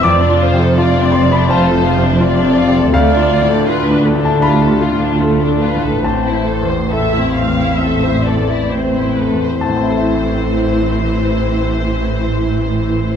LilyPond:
<<
  \new Staff \with { instrumentName = "Viola section" } { \time 4/4 \key a \minor \tempo 4 = 70 d''8 c''8 d''4 c''4 d''4 | d''4 b'8 a'8 g'8 f'8 a'8 b'8 | c''4 e''8 f''8 e''8 d''8 c''8 b'8 | <e e'>1 | }
  \new Staff \with { instrumentName = "Violin section" } { \time 4/4 \key a \minor c'16 d'16 f'16 a'16 f'16 d'16 c'16 d'16 f'16 a'16 f'16 d'16 c'16 d'16 f'16 a'16 | a16 d'16 f'16 a'16 f'16 d'16 a16 d'16 f'16 a'16 f'16 d'16 a16 d'16 f'16 a'16 | c'16 e'16 a'16 c''16 a'16 e'16 c'16 e'16 a'16 c''16 a'16 e'16 c'16 e'16 a'16 c''16 | c''1 | }
  \new Staff \with { instrumentName = "Grand piano" } { \time 4/4 \key a \minor << { d'''4. c'''16 b''16 a''4. r8 | f''4.~ f''16 a''16 b''2 | a''2. r4 | <a,, a, c' e' a' e'' a''>1 | } \\ { \tuplet 3/2 { f,8 f'8 c8 f'8 c'8 c8 c'8 f'8 c8 f'8 c'8 c8 } | \tuplet 3/2 { d,8 f'8 a,8 f'8 d'8 a,8 d'8 f'8 a,8 f'8 d'8 a,8 } | \tuplet 3/2 { a,,8 e'8 e,8 e'8 c'8 e,8 c'8 e'8 e,8 e'8 c'8 e,8 } | r1 | } >> }
  \new Staff \with { instrumentName = "Cello section" } { \clef bass \time 4/4 \key a \minor f,1 | d,1 | a,2.~ a,8 r8 | a,1 | }
  \new Staff \with { instrumentName = "Double bass section" } { \clef bass \time 4/4 \key a \minor f,,1 | d,1 | a,,2.~ a,,8 r8 | a,,1 | }
>>